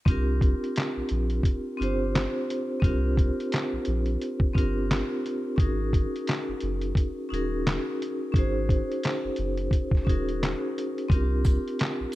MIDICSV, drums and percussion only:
0, 0, Header, 1, 2, 480
1, 0, Start_track
1, 0, Tempo, 689655
1, 45, Time_signature, 4, 2, 24, 8
1, 8457, End_track
2, 0, Start_track
2, 0, Title_t, "Drums"
2, 41, Note_on_c, 9, 36, 120
2, 54, Note_on_c, 9, 42, 84
2, 111, Note_off_c, 9, 36, 0
2, 123, Note_off_c, 9, 42, 0
2, 286, Note_on_c, 9, 36, 84
2, 294, Note_on_c, 9, 42, 60
2, 356, Note_off_c, 9, 36, 0
2, 363, Note_off_c, 9, 42, 0
2, 444, Note_on_c, 9, 42, 34
2, 514, Note_off_c, 9, 42, 0
2, 529, Note_on_c, 9, 42, 80
2, 541, Note_on_c, 9, 38, 105
2, 546, Note_on_c, 9, 39, 85
2, 598, Note_off_c, 9, 42, 0
2, 611, Note_off_c, 9, 38, 0
2, 616, Note_off_c, 9, 39, 0
2, 757, Note_on_c, 9, 42, 64
2, 826, Note_off_c, 9, 42, 0
2, 903, Note_on_c, 9, 42, 35
2, 973, Note_off_c, 9, 42, 0
2, 998, Note_on_c, 9, 36, 91
2, 1011, Note_on_c, 9, 42, 76
2, 1067, Note_off_c, 9, 36, 0
2, 1081, Note_off_c, 9, 42, 0
2, 1266, Note_on_c, 9, 42, 71
2, 1336, Note_off_c, 9, 42, 0
2, 1500, Note_on_c, 9, 38, 113
2, 1500, Note_on_c, 9, 42, 80
2, 1505, Note_on_c, 9, 39, 88
2, 1569, Note_off_c, 9, 38, 0
2, 1570, Note_off_c, 9, 42, 0
2, 1575, Note_off_c, 9, 39, 0
2, 1742, Note_on_c, 9, 42, 70
2, 1812, Note_off_c, 9, 42, 0
2, 1964, Note_on_c, 9, 36, 117
2, 1977, Note_on_c, 9, 42, 84
2, 2034, Note_off_c, 9, 36, 0
2, 2047, Note_off_c, 9, 42, 0
2, 2209, Note_on_c, 9, 36, 84
2, 2218, Note_on_c, 9, 42, 58
2, 2279, Note_off_c, 9, 36, 0
2, 2287, Note_off_c, 9, 42, 0
2, 2367, Note_on_c, 9, 42, 33
2, 2437, Note_off_c, 9, 42, 0
2, 2451, Note_on_c, 9, 42, 87
2, 2464, Note_on_c, 9, 38, 107
2, 2469, Note_on_c, 9, 39, 84
2, 2521, Note_off_c, 9, 42, 0
2, 2533, Note_off_c, 9, 38, 0
2, 2539, Note_off_c, 9, 39, 0
2, 2679, Note_on_c, 9, 42, 59
2, 2749, Note_off_c, 9, 42, 0
2, 2824, Note_on_c, 9, 42, 34
2, 2893, Note_off_c, 9, 42, 0
2, 2933, Note_on_c, 9, 42, 71
2, 3003, Note_off_c, 9, 42, 0
2, 3061, Note_on_c, 9, 36, 89
2, 3131, Note_off_c, 9, 36, 0
2, 3167, Note_on_c, 9, 36, 89
2, 3186, Note_on_c, 9, 42, 69
2, 3237, Note_off_c, 9, 36, 0
2, 3256, Note_off_c, 9, 42, 0
2, 3417, Note_on_c, 9, 38, 113
2, 3418, Note_on_c, 9, 42, 81
2, 3422, Note_on_c, 9, 39, 93
2, 3487, Note_off_c, 9, 38, 0
2, 3487, Note_off_c, 9, 42, 0
2, 3492, Note_off_c, 9, 39, 0
2, 3659, Note_on_c, 9, 42, 66
2, 3729, Note_off_c, 9, 42, 0
2, 3883, Note_on_c, 9, 36, 127
2, 3895, Note_on_c, 9, 42, 86
2, 3953, Note_off_c, 9, 36, 0
2, 3965, Note_off_c, 9, 42, 0
2, 4128, Note_on_c, 9, 36, 82
2, 4135, Note_on_c, 9, 42, 62
2, 4198, Note_off_c, 9, 36, 0
2, 4205, Note_off_c, 9, 42, 0
2, 4285, Note_on_c, 9, 42, 33
2, 4355, Note_off_c, 9, 42, 0
2, 4367, Note_on_c, 9, 42, 85
2, 4379, Note_on_c, 9, 38, 107
2, 4385, Note_on_c, 9, 39, 81
2, 4436, Note_off_c, 9, 42, 0
2, 4449, Note_off_c, 9, 38, 0
2, 4454, Note_off_c, 9, 39, 0
2, 4597, Note_on_c, 9, 42, 66
2, 4666, Note_off_c, 9, 42, 0
2, 4743, Note_on_c, 9, 42, 37
2, 4813, Note_off_c, 9, 42, 0
2, 4838, Note_on_c, 9, 36, 90
2, 4852, Note_on_c, 9, 42, 74
2, 4908, Note_off_c, 9, 36, 0
2, 4921, Note_off_c, 9, 42, 0
2, 5106, Note_on_c, 9, 42, 71
2, 5176, Note_off_c, 9, 42, 0
2, 5337, Note_on_c, 9, 38, 108
2, 5338, Note_on_c, 9, 42, 77
2, 5343, Note_on_c, 9, 39, 91
2, 5407, Note_off_c, 9, 38, 0
2, 5408, Note_off_c, 9, 42, 0
2, 5412, Note_off_c, 9, 39, 0
2, 5582, Note_on_c, 9, 42, 63
2, 5652, Note_off_c, 9, 42, 0
2, 5804, Note_on_c, 9, 36, 121
2, 5817, Note_on_c, 9, 42, 80
2, 5873, Note_off_c, 9, 36, 0
2, 5886, Note_off_c, 9, 42, 0
2, 6049, Note_on_c, 9, 36, 81
2, 6057, Note_on_c, 9, 42, 61
2, 6119, Note_off_c, 9, 36, 0
2, 6127, Note_off_c, 9, 42, 0
2, 6205, Note_on_c, 9, 42, 34
2, 6275, Note_off_c, 9, 42, 0
2, 6288, Note_on_c, 9, 42, 82
2, 6301, Note_on_c, 9, 38, 97
2, 6306, Note_on_c, 9, 39, 82
2, 6358, Note_off_c, 9, 42, 0
2, 6370, Note_off_c, 9, 38, 0
2, 6376, Note_off_c, 9, 39, 0
2, 6516, Note_on_c, 9, 42, 64
2, 6586, Note_off_c, 9, 42, 0
2, 6664, Note_on_c, 9, 42, 37
2, 6734, Note_off_c, 9, 42, 0
2, 6758, Note_on_c, 9, 36, 86
2, 6771, Note_on_c, 9, 42, 77
2, 6827, Note_off_c, 9, 36, 0
2, 6840, Note_off_c, 9, 42, 0
2, 6900, Note_on_c, 9, 36, 85
2, 6924, Note_on_c, 9, 38, 30
2, 6970, Note_off_c, 9, 36, 0
2, 6994, Note_off_c, 9, 38, 0
2, 7007, Note_on_c, 9, 36, 89
2, 7026, Note_on_c, 9, 42, 64
2, 7077, Note_off_c, 9, 36, 0
2, 7096, Note_off_c, 9, 42, 0
2, 7159, Note_on_c, 9, 42, 34
2, 7229, Note_off_c, 9, 42, 0
2, 7259, Note_on_c, 9, 38, 105
2, 7260, Note_on_c, 9, 42, 76
2, 7265, Note_on_c, 9, 39, 84
2, 7329, Note_off_c, 9, 38, 0
2, 7330, Note_off_c, 9, 42, 0
2, 7334, Note_off_c, 9, 39, 0
2, 7504, Note_on_c, 9, 42, 64
2, 7573, Note_off_c, 9, 42, 0
2, 7643, Note_on_c, 9, 42, 34
2, 7712, Note_off_c, 9, 42, 0
2, 7724, Note_on_c, 9, 36, 121
2, 7737, Note_on_c, 9, 42, 82
2, 7794, Note_off_c, 9, 36, 0
2, 7807, Note_off_c, 9, 42, 0
2, 7966, Note_on_c, 9, 54, 43
2, 7969, Note_on_c, 9, 36, 82
2, 7978, Note_on_c, 9, 42, 57
2, 8035, Note_off_c, 9, 54, 0
2, 8038, Note_off_c, 9, 36, 0
2, 8047, Note_off_c, 9, 42, 0
2, 8127, Note_on_c, 9, 42, 35
2, 8196, Note_off_c, 9, 42, 0
2, 8208, Note_on_c, 9, 42, 82
2, 8221, Note_on_c, 9, 38, 99
2, 8226, Note_on_c, 9, 39, 88
2, 8278, Note_off_c, 9, 42, 0
2, 8290, Note_off_c, 9, 38, 0
2, 8296, Note_off_c, 9, 39, 0
2, 8436, Note_on_c, 9, 42, 64
2, 8457, Note_off_c, 9, 42, 0
2, 8457, End_track
0, 0, End_of_file